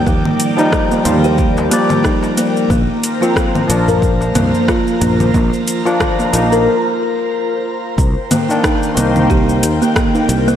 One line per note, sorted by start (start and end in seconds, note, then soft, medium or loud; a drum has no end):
0.00 2.67 D#3 medium
0.00 0.53 F3 medium
0.00 0.54 G3 medium
0.00 0.55 D#4 medium
0.00 7.94 A#4 medium
0.00 2.66 D5 medium
0.00 2.66 G5 medium
0.07 0.22 D#2 loud
0.07 0.56 A#3 medium
0.07 kick medium
0.07 shaker soft
0.25 low conga medium
0.40 closed hi-hat medium
0.40 shaker medium
0.57 1.01 F3 loud
0.57 1.02 G3 medium
0.57 0.67 D#4 medium
0.57 1.02 D#4 loud
0.57 shaker soft
0.72 kick loud
0.72 cross-stick medium
0.72 shaker soft
0.91 0.99 A#3 medium
0.91 darbuka ka soft
0.91 shaker soft
1.04 1.68 D#2 medium
1.04 1.67 F3 medium
1.04 1.68 G3 medium
1.04 1.68 F4 medium
1.04 closed hi-hat medium
1.04 darbuka tek medium
1.04 low conga medium
1.04 shaker medium
1.24 1.38 G4 medium
1.24 shaker soft
1.38 kick loud
1.38 shaker soft
1.57 darbuka ka medium
1.57 darbuka tek medium
1.57 shaker soft
1.69 2.68 F3 medium
1.69 2.69 G3 medium
1.69 1.89 A#3 loud
1.69 2.70 D5 medium
1.69 closed hi-hat medium
1.69 darbuka ka medium
1.69 shaker medium
1.89 darbuka tek medium
1.89 low conga medium
1.89 shaker soft
2.04 2.22 D#4 medium
2.04 kick loud
2.04 cross-stick medium
2.04 shaker soft
2.23 darbuka tek medium
2.23 shaker soft
2.37 2.55 A#3 medium
2.37 closed hi-hat medium
2.37 shaker medium
2.57 shaker soft
2.70 2.86 A#1 loud
2.70 3.20 A#3 medium
2.70 7.94 F4 medium
2.70 7.94 C5 medium
2.70 7.94 A#5 medium
2.70 kick medium
2.70 low conga medium
2.70 shaker soft
3.04 closed hi-hat medium
3.04 shaker medium
3.21 3.65 F3 medium
3.21 3.66 A#3 medium
3.21 3.66 C4 medium
3.21 3.30 F4 medium
3.21 shaker soft
3.36 kick loud
3.36 cross-stick medium
3.36 shaker soft
3.55 3.63 A#3 medium
3.55 low conga medium
3.55 shaker soft
3.67 4.32 A#1 medium
3.67 5.80 F3 medium
3.67 5.81 A#3 medium
3.67 closed hi-hat medium
3.67 darbuka tek medium
3.67 shaker medium
3.71 5.82 D4 medium
3.88 4.02 A#4 medium
3.88 darbuka dum medium
3.88 shaker soft
4.02 kick loud
4.02 shaker soft
4.21 darbuka ka medium
4.21 shaker soft
4.35 4.51 C2 medium
4.35 4.53 A#3 medium
4.35 closed hi-hat medium
4.35 darbuka tek medium
4.35 low conga medium
4.35 darbuka dum medium
4.35 shaker medium
4.54 shaker soft
4.68 4.86 F4 medium
4.68 kick loud
4.68 cross-stick medium
4.68 shaker soft
4.87 shaker soft
5.01 5.30 A#1 loud
5.01 5.19 A#3 medium
5.01 closed hi-hat medium
5.01 darbuka dum medium
5.01 shaker medium
5.20 low conga medium
5.20 shaker soft
5.34 5.50 A#1 loud
5.34 5.84 A#3 medium
5.34 kick loud
5.34 shaker soft
5.53 shaker soft
5.68 closed hi-hat loud
5.68 shaker medium
5.85 6.29 F3 loud
5.85 6.30 A#3 medium
5.85 6.30 D4 loud
5.85 5.94 F4 medium
5.85 shaker soft
6.00 kick loud
6.00 cross-stick loud
6.00 low conga medium
6.00 shaker soft
6.19 6.27 A#3 medium
6.19 darbuka ka soft
6.19 shaker soft
6.33 6.66 A#1 medium
6.33 6.66 F3 medium
6.33 6.66 A#3 medium
6.33 6.67 D#4 medium
6.33 closed hi-hat medium
6.33 darbuka tek medium
6.33 shaker medium
6.52 6.66 A#4 medium
6.52 shaker soft
7.98 8.14 C2 loud
7.98 10.56 D#3 medium
7.98 10.56 A#4 medium
7.98 10.56 C5 medium
7.98 10.56 G5 medium
7.98 kick loud
7.98 shaker soft
8.31 8.49 A#3 medium
8.31 closed hi-hat medium
8.31 low conga medium
8.31 shaker medium
8.49 8.93 D#3 medium
8.49 8.94 A#3 medium
8.49 8.94 D4 medium
8.49 shaker soft
8.64 8.96 D#4 medium
8.64 kick loud
8.64 cross-stick loud
8.64 shaker soft
8.83 shaker soft
8.95 9.59 C2 medium
8.95 10.56 D#3 medium
8.95 10.56 A#3 medium
8.95 9.15 A#3 medium
8.95 closed hi-hat medium
8.95 shaker medium
8.99 10.56 D#4 medium
9.16 low conga medium
9.16 shaker soft
9.30 9.48 G4 medium
9.30 kick loud
9.30 shaker soft
9.49 shaker soft
9.63 9.79 D#2 medium
9.63 closed hi-hat medium
9.63 shaker medium
9.82 9.95 A#3 medium
9.82 shaker soft
9.96 kick loud
9.96 cross-stick loud
9.96 low conga medium
9.96 shaker soft
10.15 10.28 D#4 medium
10.15 shaker soft
10.29 10.56 C2 medium
10.29 closed hi-hat medium
10.29 shaker medium
10.48 10.56 A#3 loud
10.48 shaker soft